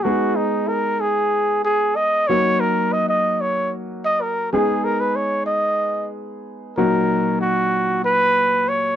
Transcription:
X:1
M:7/8
L:1/16
Q:1/4=94
K:Ebm
V:1 name="Trumpet"
G2 E2 B2 A4 A2 e2 | d2 B2 e e2 d2 z2 e B2 | A2 B c d2 e4 z4 | B4 G4 c4 d2 |]
V:2 name="Grand piano"
[A,CEA]12- [A,CEA]2 | [G,B,EG]12- [G,B,EG]2 | [A,CEA]12- [A,CEA]2 | [B,,G,EG]12- [B,,G,EG]2 |]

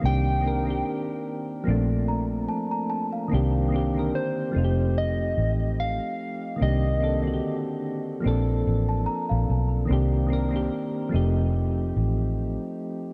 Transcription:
X:1
M:4/4
L:1/16
Q:"Swing 16ths" 1/4=73
K:Cdor
V:1 name="Celesta"
z8 z2 b2 a b a f- | f z12 z3 | z8 z3 a b f3 | z16 |]
V:2 name="Soft synth lead"
g6 z8 z2 | z4 c4 e4 f4 | e6 z8 z2 | z16 |]
V:3 name="Synth keys"
[E,B,CDG] z [E,B,CDB] [E,B,CDG]4- [E,B,CDG] [F,A,B,CD]6 z2 | [E,B,CDG] z [E,B,CDG] [D,E,B,CDB]3 [F,A,CEFG]6 z4 | [E,B,CDG] z [E,B,CDA] [D,E,B,C^FG]4- [D,E,B,CFG] [=F,B,CDA]6 z2 | [E,B,CDG] z [E,B,CDB] [E,B,CDG]3 [F,A,CEG]6 z4 |]
V:4 name="Fingered electric bass" clef=bass
C,,4 z4 B,,,4 z4 | C,,4 z2 F,,,4 A,,,3 z3 | C,,4 z4 B,,,2 A,,,2 z B,,, =B,,,2 | C,,4 z2 F,,,4 A,,,3 z3 |]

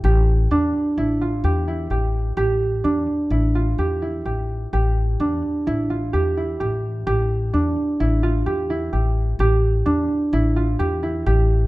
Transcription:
X:1
M:5/4
L:1/8
Q:1/4=128
K:C
V:1 name="Harp"
G2 D2 E F G E G2 | G2 D2 E F G E G2 | G2 D2 E F G E G2 | G2 D2 E F G E G2 |
G2 D2 E F G E G2 |]
V:2 name="Upright bass" clef=bass
A,,,2 E,, z A,,,2 E,,2 A,,,2 | A,,,2 E,, z A,,,2 E,,2 A,,,2 | A,,,2 E,, z A,,,2 E,,2 A,,,2 | A,,,2 E,, z A,,,2 E,,2 A,,,2 |
A,,,2 E,, z A,,,2 E,,2 A,,,2 |]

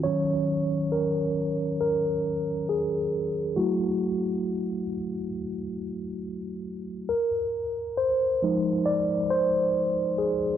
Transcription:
X:1
M:4/4
L:1/8
Q:"Swing 16ths" 1/4=68
K:Ebdor
V:1 name="Tine electric piano"
d2 B2 B2 A2 | G4 z4 | B2 c2 =d c2 A |]
V:2 name="Tine electric piano" clef=bass
[E,G,D]3 z4 z | [G,=A,_F]3 z4 z | z3 [F,A,E]4- [F,A,E] |]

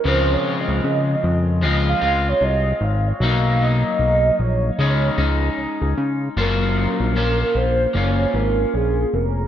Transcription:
X:1
M:4/4
L:1/16
Q:"Swing 16ths" 1/4=76
K:Gblyd
V:1 name="Soft synth lead"
(3c2 d2 e2- e3 z e f2 d e2 f d | f2 e4 d6 z4 | B6 c2 d2 B2 A2 B2 |]
V:2 name="Clean electric guitar"
[D,F,A,CF]8 [F,A,CF]2 [A,CF]6 | [G,B,E]8 [D,A,DE]2 [A,DE]6 | [G,B,DFc]4 [B,DFc]4 [B,DF]8 |]
V:3 name="Analog synth bass" clef=bass
D,,2 z D,, D,2 F,,2 D,,2 D,,2 C,,2 A,,,2 | _C,,4 C,,2 B,,,2 D,,2 D,,2 D,, D,, D,2 | G,,,3 B,,,3 B,,,2 G,,,2 A,,,2 B,,,2 F,,,2 |]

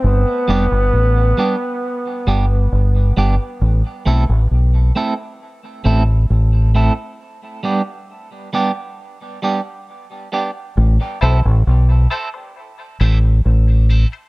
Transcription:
X:1
M:4/4
L:1/16
Q:1/4=67
K:Am
V:1 name="Synth stab"
z16 | z16 | z16 | z2 [EAc] z3 [EAc] [Ac] z2 [EAc] z3 [EAc] [EAc] |]
V:2 name="Clean electric guitar"
z2 [G,B,DG]2 z2 [G,B,DG]2 z2 [G,B,DG]2 z2 [G,B,DG]2 | z2 [A,CEA]2 z2 [A,CEA]2 z2 [A,CEA]2 z2 [A,CEA]2 | z2 [G,B,DG]2 z2 [G,B,DG]2 z2 [G,B,DG]2 z2 [G,B,DG]2 | z2 [A,CEA]2 z2 [A,CEA]2 z2 [A,CEA]2 z2 [A,CEA]2 |]
V:3 name="Trombone"
B,12- B,2 z2 | z16 | z16 | z16 |]
V:4 name="Fingered electric bass" clef=bass
G,,, z F,,, G,,, A,,,2 z4 G,,,2 G,,,2 G,,, z | A,,, z B,,, A,,, B,,,2 z4 A,,,2 A,,,3 z | z16 | A,,, z B,,, A,,, B,,,2 z4 A,,,2 A,,,3 z |]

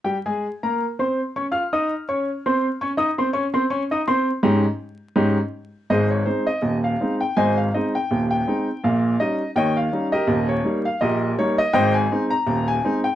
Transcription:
X:1
M:2/4
L:1/16
Q:"Swing 16ths" 1/4=82
K:Ab
V:1 name="Upright piano"
[G,Gg] [A,Aa]2 [B,Bb]2 [Ccc']2 [Ddd'] | [Fff'] [Eee']2 [Ddd']2 [Ccc']2 [Ddd'] | [Eee'] [Ccc'] [Ddd'] [Ccc'] [Ddd'] [Eee'] [Ccc']2 | [A,,DEG]2 z2 [A,,DEG]2 z2 |
[Ace] d c e2 f2 g | [cea] f e g2 g3 | f2 e2 [deg] f2 [GBe]- | [GBe] d2 f [GBe]2 d e |
[ceg] a2 b2 a2 g |]
V:2 name="Upright piano" clef=bass
z8 | z8 | z8 | z8 |
[A,,,A,,]2 [A,CE]2 [E,,,E,,]2 [A,CE]2 | [A,,,A,,]2 [A,CE]2 [E,,,E,,]2 [A,CE]2 | [B,,,B,,]2 [G,DE]2 [E,,E,]2 [G,DE]2 | [E,,,E,,]2 [G,B,E]2 [B,,,B,,]2 [G,B,E]2 |
[A,,,A,,]2 [A,CE]2 [E,,,E,,]2 [A,CE]2 |]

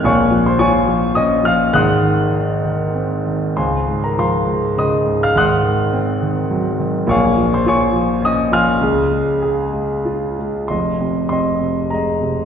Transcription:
X:1
M:3/4
L:1/16
Q:1/4=102
K:Db
V:1 name="Grand piano"
[dfad']3 [cc'] [dad']4 [ee']2 [ff']2 | [gc'e'g']8 z4 | [cfac']3 [Bb] [cfc']4 [ec'e']3 [ff'] | [gc'e'g']8- [gc'e'g']2 z2 |
[dfad']3 [cc'] [dad']4 [ee']2 [fac'f']2- | [fac'f']8- [fac'f']2 z2 | [K:Fm] [ec']4 [ec']4 [eb]4 |]
V:2 name="Grand piano" clef=bass
[B,,,B,,]2 F,2 F2 F,2 D2 F,2 | [A,,,A,,]2 E,2 E2 E,2 C2 E,2 | D,,2 A,,2 F,2 A,,2 D,2 A,,2 | [A,,,A,,]2 E,2 C2 E,2 G,2 E,2 |
[B,,,B,,]2 F,2 F2 F,2 D2 F,2 | [D,,D,]2 A,2 A2 A,2 F2 A,2 | [K:Fm] [F,,,F,,]2 C,2 C2 C,2 A,2 C,2 |]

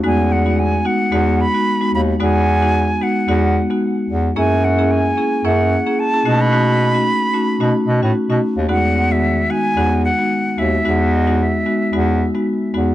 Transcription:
X:1
M:4/4
L:1/16
Q:"Swing 16ths" 1/4=111
K:E
V:1 name="Flute"
g2 f2 g2 f4 b4 b2 | g6 f4 z6 | g2 f2 g4 f4 a3 b- | b12 z4 |
f3 e3 g4 f4 e2- | e2 d2 e6 z6 |]
V:2 name="Marimba"
[G,B,DF]3 [G,B,DF] z2 [G,B,DF]2 [G,B,DF]2 z [G,B,DF] z [G,B,DF] z2 | [G,B,DF]3 [G,B,DF] z2 [G,B,DF]2 [G,B,DF]2 z [G,B,DF] z4 | [^A,CEG]3 [A,CEG] z2 [A,CEG]2 [A,CEG]2 z [A,CEG] z [A,CEG] [=A,CDF]2 | [A,CDF]3 [A,CDF] z2 [A,CDF]2 [A,CDF]2 z [A,CDF] z [A,CDF] z2 |
[G,B,DF]3 [D,G,B,F]3 [G,B,DF]2 [G,B,DF]2 z [G,B,DF] z2 [G,B,DF]2 | [G,B,DF]3 [G,B,DF]3 [G,B,DF]2 [G,B,DF]2 z [G,B,DF] z2 [G,B,DF]2 |]
V:3 name="Bass clarinet" clef=bass
E,,6 z2 E,,3 z3 D,,2 | E,,6 z2 E,,3 z3 E,,2 | F,,6 z2 F,,3 z3 B,,2- | B,,6 z2 B,, z B,, A,, z B,, z D,, |
E,,6 z2 E,,3 z3 D,,2 | E,,6 z2 E,,3 z3 E,,2 |]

